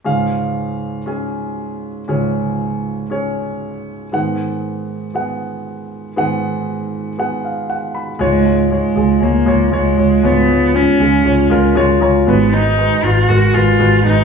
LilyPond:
<<
  \new Staff \with { instrumentName = "Grand piano" } { \time 4/4 \key des \mixolydian \tempo 4 = 118 << { r1 | r1 | r1 | r2 r8 f''8 ges''8 ces'''8 |
r1 | r2 r8 f''8 aes''8 bes''8 | r1 | } \\ { <des' aes' f''>2 <des' aes' aes''>2 | <des' aes' des''>2 <des' aes' des''>2 | <ces' aes' ges''>2 <ces' aes' ges''>2 | <ces' aes' ges''>2 <ces' aes' ges''>2 |
<aes f' des''>8 <aes f' des''>8 <aes f' des''>8 <aes f' aes'>8 <aes f' des''>8 <aes f' des''>8 <aes f' des''>8 <aes f' des''>8 | <aes f' des''>8 <aes f' des''>8 <aes f' des''>8 <aes f' aes'>8 <aes f' des''>8 <aes f' bes'>8 <aes f' des''>8 <aes f' des''>8 | <aes ges' ces''>8 <aes ges' ces''>8 <aes ges' ces''>8 <aes ges' ces''>8 <aes ges' bes'>8 <aes ges' ces''>8 <aes ges' ces''>8 <aes ges' ces''>8 | } >> }
  \new Staff \with { instrumentName = "Grand piano" } { \clef bass \time 4/4 \key des \mixolydian <des, aes,>1 | <des, aes,>1 | <aes, ees>1 | <aes, ees>1 |
aes,4. r2 r8 | aes,4. r2 r8 | <aes, ees>4. r2 r8 | }
  \new Staff \with { instrumentName = "Cello" } { \time 4/4 \key des \mixolydian r1 | r1 | r1 | r1 |
aes4 aes4 bes4 aes4 | ces'4 des'2 r4 | ces'8 ees'4 f'8 ges'8 f'4 ees'8 | }
  \new Staff \with { instrumentName = "Fingered electric bass" } { \clef bass \time 4/4 \key des \mixolydian r1 | r1 | r1 | r1 |
des,4~ des,16 r16 des,8 des,8 r8 des,8 des,8 | des,4~ des,16 r16 des,8 des,8 des,8 des,8 des,8 | aes,,4~ aes,,16 r16 aes,,8 aes,,8 aes,,8 aes,,8 aes,,8 | }
>>